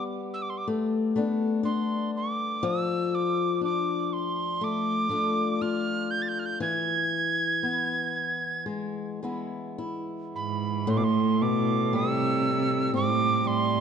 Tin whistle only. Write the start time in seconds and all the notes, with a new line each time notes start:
0.34 E6
0.42 D6
0.50 C6
0.58 D6
1.65 C6
2.17 D6
2.66 E6
3.15 D6
3.64 D6
4.13 C6
4.64 D6
5.62 F6
6.11 G6
6.22 A6
6.28 G6
6.39 F6
6.46 G6
6.62 G#6
10.36 B5
10.90 C6
10.97 D6
11.04 C6
11.42 D6
11.95 E6
12.95 D6
13.47 C6